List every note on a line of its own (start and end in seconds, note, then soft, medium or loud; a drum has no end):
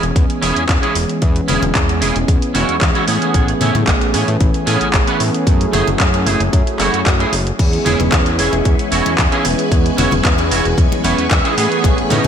0.00 0.12 E1 medium
0.00 0.92 E3 medium
0.00 0.92 G#3 medium
0.00 0.92 B3 medium
0.00 0.93 C#4 medium
0.00 0.93 G#4 medium
0.00 closed hi-hat soft
0.15 0.26 E2 medium
0.15 muted clean electric guitar stroke soft
0.15 kick loud
0.15 closed hi-hat medium
0.30 closed hi-hat soft
0.42 0.52 E1 loud
0.42 0.62 C#4 loud
0.42 0.62 E4 loud
0.42 0.63 G#4 loud
0.42 open hi-hat loud
0.56 0.66 E2 soft
0.56 closed hi-hat soft
0.69 0.79 E2 loud
0.69 kick loud
0.69 clap loud
0.69 closed hi-hat medium
0.82 0.95 C#4 medium
0.82 0.95 E4 medium
0.82 0.96 G#4 medium
0.82 closed hi-hat soft
0.95 1.05 E1 medium
0.95 1.19 E3 medium
0.95 1.19 G#3 medium
0.95 1.19 B3 medium
0.95 1.19 C#4 medium
0.95 1.19 G#4 loud
0.95 open hi-hat loud
1.09 muted clean electric guitar stroke soft
1.09 closed hi-hat soft
1.21 1.41 E2 medium
1.21 1.98 E3 medium
1.21 1.98 G#3 medium
1.21 1.99 B3 medium
1.21 1.99 C#4 medium
1.21 1.99 G#4 medium
1.21 kick loud
1.21 closed hi-hat medium
1.36 closed hi-hat soft
1.48 1.59 E1 medium
1.48 1.62 C#4 loud
1.48 1.62 E4 loud
1.48 1.63 G#4 loud
1.48 open hi-hat loud
1.48 low conga medium
1.62 1.72 E1 medium
1.62 closed hi-hat soft
1.62 high conga medium
1.62 low conga medium
1.75 2.03 E2 loud
1.75 kick loud
1.75 clap loud
1.75 closed hi-hat medium
1.89 closed hi-hat soft
2.01 2.12 E1 medium
2.01 3.04 E3 medium
2.01 3.05 G#3 medium
2.01 3.05 B3 medium
2.01 2.15 C#4 medium
2.01 3.05 C#4 medium
2.01 2.15 E4 medium
2.01 2.16 G#4 medium
2.01 3.05 G#4 medium
2.01 open hi-hat loud
2.16 2.25 E1 medium
2.16 closed hi-hat soft
2.28 2.38 E2 loud
2.28 muted clean electric guitar stroke soft
2.28 kick loud
2.28 closed hi-hat medium
2.42 closed hi-hat soft
2.54 2.65 E1 loud
2.54 2.75 C#4 loud
2.54 2.75 E4 loud
2.54 2.75 F#4 loud
2.54 open hi-hat loud
2.54 high conga medium
2.69 2.79 E2 soft
2.69 closed hi-hat soft
2.81 2.91 E2 loud
2.81 kick loud
2.81 clap loud
2.81 closed hi-hat medium
2.95 3.07 C#4 medium
2.95 3.08 E4 medium
2.95 3.07 F#4 medium
2.95 closed hi-hat soft
3.07 3.18 A2 medium
3.07 3.31 E3 medium
3.07 3.31 A3 medium
3.07 3.51 B3 medium
3.07 3.32 B3 medium
3.07 3.51 C#4 medium
3.07 3.32 C#4 medium
3.07 3.51 G#4 loud
3.07 3.32 G#4 loud
3.07 open hi-hat loud
3.22 closed hi-hat soft
3.34 3.54 A1 medium
3.34 4.11 E3 medium
3.34 4.11 A3 medium
3.34 4.11 B3 medium
3.34 4.11 C#4 medium
3.34 4.12 G#4 loud
3.34 kick loud
3.34 closed hi-hat medium
3.48 closed hi-hat soft
3.61 3.71 A2 medium
3.61 3.75 B3 loud
3.61 3.75 C#4 loud
3.61 3.75 E4 loud
3.61 open hi-hat medium
3.61 low conga medium
3.75 3.84 A2 medium
3.75 closed hi-hat soft
3.75 high conga medium
3.75 low conga medium
3.87 4.16 A1 loud
3.87 muted clean electric guitar stroke soft
3.87 kick loud
3.87 clap loud
3.87 closed hi-hat medium
4.01 closed hi-hat soft
4.13 4.24 A2 medium
4.13 5.17 E3 medium
4.13 5.17 A3 medium
4.13 4.28 B3 medium
4.13 5.17 B3 medium
4.13 4.28 C#4 medium
4.13 5.18 C#4 medium
4.13 4.28 G#4 medium
4.13 5.18 G#4 medium
4.13 open hi-hat loud
4.28 4.37 A2 medium
4.28 closed hi-hat soft
4.40 4.51 A1 medium
4.40 muted clean electric guitar stroke soft
4.40 kick loud
4.40 closed hi-hat medium
4.54 closed hi-hat soft
4.66 4.77 A2 medium
4.66 4.87 B3 loud
4.66 4.87 C#4 loud
4.66 4.88 G#4 loud
4.66 open hi-hat loud
4.81 4.91 A1 soft
4.81 closed hi-hat soft
4.94 5.04 A1 loud
4.94 kick loud
4.94 clap loud
4.94 closed hi-hat medium
5.07 5.20 B3 medium
5.07 5.20 C#4 medium
5.07 5.20 B4 medium
5.07 closed hi-hat soft
5.20 5.30 A2 medium
5.20 5.44 E3 medium
5.20 5.44 A3 medium
5.20 5.44 B3 medium
5.20 5.44 C#4 medium
5.20 5.44 G#4 loud
5.20 open hi-hat loud
5.34 muted clean electric guitar stroke soft
5.34 closed hi-hat soft
5.46 5.66 F#2 medium
5.46 6.23 F#3 medium
5.46 6.23 A3 medium
5.46 6.23 C#4 medium
5.46 6.24 E4 medium
5.46 6.24 G#4 loud
5.46 kick loud
5.46 closed hi-hat medium
5.61 closed hi-hat soft
5.73 5.83 F#1 medium
5.73 5.87 A3 loud
5.73 5.87 E4 loud
5.73 5.88 G#4 loud
5.73 open hi-hat medium
5.73 low conga medium
5.87 5.96 F#1 medium
5.87 closed hi-hat soft
5.87 high conga medium
5.87 low conga medium
6.00 6.28 F#2 loud
6.00 muted clean electric guitar stroke soft
6.00 kick loud
6.00 clap loud
6.00 closed hi-hat medium
6.14 closed hi-hat soft
6.26 6.36 F#1 medium
6.26 7.29 F#3 medium
6.26 6.40 A3 medium
6.26 7.30 A3 medium
6.26 7.30 C#4 medium
6.26 6.40 E4 medium
6.26 7.30 E4 medium
6.26 6.40 G#4 medium
6.26 7.30 G#4 medium
6.26 open hi-hat loud
6.26 high conga medium
6.40 6.49 F#1 loud
6.40 closed hi-hat soft
6.53 6.63 F#2 medium
6.53 muted clean electric guitar stroke soft
6.53 kick loud
6.53 closed hi-hat medium
6.67 closed hi-hat soft
6.79 6.89 F#1 medium
6.79 7.00 A3 loud
6.79 7.00 E4 loud
6.79 7.00 F#4 loud
6.79 clap medium
6.79 open hi-hat loud
6.79 high conga medium
6.94 7.04 F#2 soft
6.94 closed hi-hat soft
7.06 7.25 F#2 medium
7.06 kick loud
7.06 clap loud
7.06 closed hi-hat medium
7.19 7.32 A3 medium
7.19 7.33 E4 medium
7.19 7.33 G#4 medium
7.19 closed hi-hat soft
7.33 7.52 F#1 medium
7.33 open hi-hat loud
7.33 high conga medium
7.46 muted clean electric guitar stroke soft
7.46 closed hi-hat soft
7.58 7.79 E2 medium
7.58 8.35 E3 medium
7.58 8.36 G#3 medium
7.58 8.36 B3 medium
7.58 8.36 C#4 medium
7.58 11.54 E4 medium
7.58 8.36 G#4 loud
7.58 11.54 B4 medium
7.58 11.54 G#5 medium
7.58 12.28 C#6 medium
7.58 kick loud
7.58 closed hi-hat medium
7.58 crash medium
7.58 muted conga soft
7.73 closed hi-hat soft
7.85 7.96 E1 medium
7.85 7.99 C#4 loud
7.85 8.00 E4 loud
7.85 8.00 G#4 loud
7.85 open hi-hat loud
7.85 low conga medium
8.00 8.09 E1 medium
8.00 closed hi-hat soft
8.00 high conga medium
8.00 low conga medium
8.12 8.41 E2 loud
8.12 kick loud
8.12 clap loud
8.12 closed hi-hat medium
8.12 muted conga medium
8.26 closed hi-hat soft
8.38 8.49 E1 medium
8.38 9.42 E3 medium
8.38 9.42 G#3 medium
8.38 9.42 B3 medium
8.38 8.53 C#4 medium
8.38 9.42 C#4 medium
8.38 8.53 E4 medium
8.38 8.53 G#4 medium
8.38 9.43 G#4 medium
8.38 open hi-hat loud
8.53 8.62 E1 loud
8.53 closed hi-hat soft
8.53 muted conga soft
8.65 8.75 E2 medium
8.65 muted clean electric guitar stroke soft
8.65 kick loud
8.65 closed hi-hat medium
8.79 closed hi-hat soft
8.91 9.02 E1 medium
8.91 9.12 C#4 loud
8.91 9.12 E4 loud
8.91 9.12 F#4 loud
8.91 open hi-hat loud
9.06 9.16 E2 soft
9.06 closed hi-hat soft
9.06 muted conga medium
9.18 9.28 E2 loud
9.18 kick loud
9.18 clap loud
9.18 closed hi-hat medium
9.32 9.45 C#4 medium
9.32 9.45 E4 medium
9.32 9.45 G#4 medium
9.32 closed hi-hat soft
9.44 9.55 E1 medium
9.44 9.68 E3 medium
9.44 9.68 G#3 medium
9.44 9.69 B3 medium
9.44 9.69 C#4 medium
9.44 9.69 G#4 loud
9.44 open hi-hat loud
9.44 muted conga medium
9.58 muted clean electric guitar stroke soft
9.58 closed hi-hat soft
9.70 9.91 E2 medium
9.70 10.48 E3 medium
9.70 10.48 G#3 medium
9.70 10.48 B3 medium
9.70 10.48 C#4 medium
9.70 10.49 G#4 loud
9.70 kick loud
9.70 closed hi-hat medium
9.86 closed hi-hat soft
9.98 10.08 E1 medium
9.98 10.12 C#4 loud
9.98 10.12 E4 loud
9.98 10.12 F#4 loud
9.98 open hi-hat loud
9.98 muted conga medium
9.98 low conga medium
10.11 10.21 E1 medium
10.11 closed hi-hat soft
10.11 high conga medium
10.11 low conga medium
10.24 10.53 E2 loud
10.24 muted clean electric guitar stroke soft
10.24 kick loud
10.24 clap loud
10.24 closed hi-hat medium
10.38 closed hi-hat soft
10.38 muted conga soft
10.50 10.61 E1 medium
10.50 11.54 E3 medium
10.50 11.54 G#3 medium
10.50 11.54 B3 medium
10.50 10.65 C#4 medium
10.50 11.55 C#4 medium
10.50 10.65 E4 medium
10.50 10.65 F#4 medium
10.50 11.55 G#4 medium
10.50 open hi-hat loud
10.65 10.74 E1 loud
10.65 closed hi-hat soft
10.77 10.88 E2 loud
10.77 muted clean electric guitar stroke soft
10.77 kick loud
10.77 closed hi-hat medium
10.92 closed hi-hat soft
10.92 muted conga medium
11.04 11.14 E1 loud
11.04 11.24 C#4 loud
11.04 11.25 E4 loud
11.04 11.25 B4 loud
11.04 11.29 F#5 medium
11.04 open hi-hat loud
11.04 high conga medium
11.18 11.28 E2 soft
11.18 closed hi-hat soft
11.31 11.41 E2 loud
11.31 11.56 E5 medium
11.31 kick loud
11.31 clap loud
11.31 closed hi-hat medium
11.31 muted conga medium
11.44 11.56 C#4 medium
11.44 11.57 E4 medium
11.44 11.57 G#4 medium
11.44 closed hi-hat soft
11.57 11.67 A2 medium
11.57 11.81 E3 medium
11.57 12.28 A3 medium
11.57 11.81 A3 medium
11.57 12.00 B3 medium
11.57 11.81 B3 medium
11.57 12.00 C#4 medium
11.57 11.81 C#4 medium
11.57 11.81 G#4 loud
11.57 12.01 G#4 loud
11.57 11.82 B4 medium
11.57 12.28 G#5 medium
11.57 12.28 B5 medium
11.57 open hi-hat loud
11.72 closed hi-hat soft
11.83 12.03 A1 medium
11.83 12.28 E3 medium
11.83 12.28 A3 medium
11.83 12.28 B3 medium
11.83 12.28 C#4 medium
11.83 12.28 G#4 loud
11.83 kick loud
11.83 closed hi-hat medium
11.83 muted conga medium
11.98 closed hi-hat soft
12.10 12.21 A2 medium
12.10 12.24 B3 loud
12.10 12.24 C#4 loud
12.10 12.25 D#4 loud
12.10 open hi-hat loud
12.10 low conga medium
12.24 high conga medium